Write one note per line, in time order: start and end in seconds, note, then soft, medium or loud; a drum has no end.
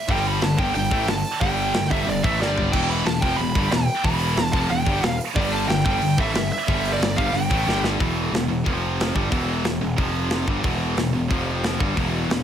0.00 0.11 E5 loud
0.08 0.39 G1 medium
0.08 0.41 G2 loud
0.08 0.41 D3 loud
0.08 0.42 G3 loud
0.08 0.26 G5 loud
0.08 kick loud
0.08 open hi-hat medium
0.24 0.44 B5 medium
0.24 open hi-hat medium
0.41 0.57 G1 medium
0.41 0.55 G2 medium
0.41 0.55 D3 medium
0.41 0.60 A5 loud
0.41 snare loud
0.41 open hi-hat medium
0.58 0.74 G1 loud
0.58 0.74 G2 medium
0.58 0.74 D3 loud
0.58 0.75 G3 medium
0.58 0.73 G5 loud
0.58 kick loud
0.58 open hi-hat medium
0.74 0.90 G1 medium
0.74 0.89 G2 medium
0.74 0.89 D3 medium
0.74 1.06 G5 loud
0.74 open hi-hat medium
0.91 1.06 A1 loud
0.91 1.07 A2 medium
0.91 1.08 E3 medium
0.91 1.08 A3 medium
0.91 kick loud
1.07 1.23 G1 medium
1.07 1.21 G2 medium
1.07 1.22 D3 medium
1.07 1.41 A5 medium
1.07 snare loud
1.07 open hi-hat medium
1.25 open hi-hat medium
1.41 1.72 G1 medium
1.41 1.73 G2 medium
1.41 1.74 D3 loud
1.41 1.75 G3 loud
1.41 1.87 G5 loud
1.41 kick loud
1.41 open hi-hat medium
1.57 open hi-hat medium
1.74 1.89 G1 medium
1.74 1.87 G2 medium
1.74 1.88 D3 medium
1.74 snare loud
1.74 open hi-hat medium
1.85 snare soft
1.90 2.06 G1 medium
1.90 2.05 G2 medium
1.90 2.06 D3 loud
1.90 2.07 G3 loud
1.90 2.08 E5 medium
1.90 kick loud
1.90 open hi-hat medium
2.06 2.22 G1 medium
2.06 2.20 G2 medium
2.06 2.20 D3 medium
2.06 2.23 D5 loud
2.06 open hi-hat medium
2.23 2.39 A1 loud
2.23 2.40 A2 medium
2.23 2.40 E3 medium
2.23 2.41 A3 medium
2.23 2.40 E5 medium
2.23 kick loud
2.40 2.71 G1 loud
2.40 2.72 G2 medium
2.40 2.73 D3 loud
2.40 2.73 G3 loud
2.40 2.74 D5 medium
2.40 snare medium
2.58 floor tom medium
2.72 3.03 E1 loud
2.72 3.05 E2 medium
2.72 3.05 B2 loud
2.72 3.05 E3 loud
2.72 2.89 G5 loud
2.72 kick loud
2.72 crash loud
2.90 3.06 B5 medium
2.90 open hi-hat medium
3.05 3.21 E1 medium
3.05 3.19 E2 medium
3.05 3.19 B2 medium
3.05 3.21 A5 medium
3.05 snare loud
3.05 open hi-hat medium
3.15 snare soft
3.21 3.37 F1 loud
3.21 3.38 F2 medium
3.21 3.38 C3 medium
3.21 3.39 F3 medium
3.21 3.38 G5 medium
3.21 kick loud
3.21 open hi-hat medium
3.36 3.54 E1 medium
3.36 3.68 B5 loud
3.36 open hi-hat medium
3.41 3.53 E2 medium
3.41 3.53 B2 medium
3.55 3.70 G1 medium
3.55 3.71 G2 medium
3.55 3.72 D3 medium
3.55 3.72 G3 medium
3.55 kick loud
3.55 open hi-hat medium
3.71 3.86 E1 medium
3.71 3.84 E2 medium
3.71 3.85 B2 medium
3.71 4.06 G5 loud
3.71 snare loud
3.71 open hi-hat medium
3.88 open hi-hat medium
4.04 4.35 E1 loud
4.04 4.36 E2 medium
4.04 4.37 B2 medium
4.04 4.37 E3 medium
4.04 4.55 B5 loud
4.04 kick loud
4.04 open hi-hat medium
4.20 open hi-hat medium
4.36 4.52 E1 medium
4.36 4.51 E2 medium
4.36 4.51 B2 medium
4.36 snare loud
4.36 open hi-hat medium
4.46 snare soft
4.53 4.69 F1 medium
4.53 4.70 F2 loud
4.53 4.70 C3 loud
4.53 4.70 F3 loud
4.53 4.70 A5 medium
4.53 kick medium
4.53 open hi-hat medium
4.69 4.85 E1 medium
4.69 4.83 E2 medium
4.69 4.84 B2 medium
4.69 5.16 G5 loud
4.69 open hi-hat medium
4.86 5.02 G1 medium
4.86 5.02 G2 medium
4.86 5.03 D3 loud
4.86 5.03 G3 medium
4.86 kick loud
5.03 5.18 E1 medium
5.03 5.16 E2 medium
5.03 5.17 B2 medium
5.03 snare loud
5.03 open hi-hat medium
5.21 open hi-hat medium
5.35 5.66 G1 loud
5.35 5.69 G2 medium
5.35 5.69 D3 loud
5.35 5.69 G3 medium
5.35 5.53 D5 loud
5.35 kick loud
5.35 open hi-hat medium
5.52 5.68 A5 medium
5.52 open hi-hat medium
5.68 5.84 G1 medium
5.68 5.83 G2 medium
5.68 5.83 D3 medium
5.68 5.84 G5 medium
5.68 snare loud
5.68 open hi-hat medium
5.80 snare soft
5.85 6.00 G1 medium
5.85 6.01 G2 loud
5.85 6.01 D3 medium
5.85 6.02 G3 loud
5.85 6.16 G5 loud
5.85 kick loud
5.85 open hi-hat medium
6.01 6.17 G1 medium
6.01 6.15 G2 medium
6.01 6.15 D3 medium
6.01 open hi-hat medium
6.18 6.33 A1 loud
6.18 6.35 A2 medium
6.18 6.35 E3 medium
6.18 6.35 A3 medium
6.18 6.51 E5 medium
6.18 kick loud
6.34 6.50 G1 medium
6.34 6.49 G2 medium
6.34 6.49 D3 medium
6.34 snare loud
6.34 open hi-hat medium
6.51 6.90 E5 medium
6.51 open hi-hat medium
6.68 6.98 G1 loud
6.68 7.00 G2 loud
6.68 7.00 D3 medium
6.68 7.01 G3 loud
6.68 kick loud
6.68 open hi-hat medium
6.85 open hi-hat medium
6.93 7.16 D5 medium
6.99 7.15 G1 medium
6.99 7.14 G2 medium
6.99 7.14 D3 medium
6.99 snare loud
6.99 open hi-hat medium
7.17 7.32 G1 loud
7.17 7.31 G2 medium
7.17 7.32 D3 loud
7.17 7.33 G3 loud
7.17 7.34 F5 medium
7.17 kick medium
7.17 open hi-hat medium
7.33 7.48 G1 medium
7.33 7.46 G2 medium
7.33 7.47 D3 medium
7.33 7.80 G5 medium
7.33 open hi-hat medium
7.50 7.66 A1 loud
7.50 7.65 A2 medium
7.50 7.66 E3 medium
7.50 7.66 A3 medium
7.50 kick loud
7.50 open hi-hat medium
7.64 7.97 G1 loud
7.64 7.97 G2 loud
7.64 7.98 D3 medium
7.64 7.98 G3 loud
7.69 snare medium
7.84 snare medium
7.98 8.31 E1 medium
7.98 8.31 E2 medium
7.98 8.31 B2 medium
7.98 8.32 E3 medium
7.98 kick loud
7.98 open hi-hat medium
8.32 8.47 E1 medium
8.32 8.46 E2 medium
8.32 8.46 B2 medium
8.32 snare loud
8.32 open hi-hat soft
8.48 8.64 E1 medium
8.48 8.62 E2 medium
8.48 8.62 B2 medium
8.64 9.12 F1 loud
8.64 9.14 F2 medium
8.64 9.14 C3 medium
8.64 9.15 F3 medium
8.64 kick medium
8.64 open hi-hat medium
9.00 snare loud
9.00 open hi-hat medium
9.15 9.31 G1 medium
9.15 9.31 G2 medium
9.15 9.32 D3 medium
9.15 9.32 G3 medium
9.15 kick loud
9.31 9.63 E1 medium
9.31 9.64 E2 medium
9.31 9.64 B2 medium
9.31 9.65 E3 loud
9.31 kick loud
9.31 open hi-hat medium
9.64 9.80 E1 medium
9.64 9.78 E2 medium
9.64 9.78 B2 medium
9.64 snare loud
9.64 open hi-hat medium
9.81 9.97 E1 medium
9.81 9.95 E2 medium
9.81 9.95 B2 medium
9.97 10.44 F1 medium
9.97 10.47 F2 medium
9.97 10.47 C3 medium
9.97 10.48 F3 loud
9.97 kick medium
9.97 open hi-hat medium
10.30 snare loud
10.30 open hi-hat medium
10.47 10.63 G1 loud
10.47 10.63 G2 medium
10.47 10.64 D3 medium
10.47 10.64 G3 medium
10.47 kick loud
10.64 10.95 E1 medium
10.64 10.96 E2 medium
10.64 10.97 B2 medium
10.64 10.97 E3 medium
10.64 kick loud
10.64 open hi-hat medium
10.96 11.12 E1 medium
10.96 11.11 E2 medium
10.96 11.11 B2 medium
10.96 snare loud
10.96 open hi-hat soft
11.13 11.29 E1 medium
11.13 11.28 E2 medium
11.13 11.28 B2 medium
11.30 11.77 F1 loud
11.30 11.80 F2 medium
11.30 11.80 C3 medium
11.30 11.80 F3 medium
11.30 kick medium
11.30 open hi-hat soft
11.64 snare loud
11.64 open hi-hat medium
11.80 11.96 G1 loud
11.80 11.96 G2 medium
11.80 11.96 D3 medium
11.80 11.97 G3 medium
11.80 kick loud
11.96 12.28 E1 medium
11.96 12.29 E2 medium
11.96 12.29 B2 medium
11.96 12.30 E3 loud
11.96 kick loud
11.96 open hi-hat medium
12.29 12.43 E1 medium
12.29 12.43 E2 medium
12.29 12.43 B2 medium
12.29 snare loud
12.29 open hi-hat soft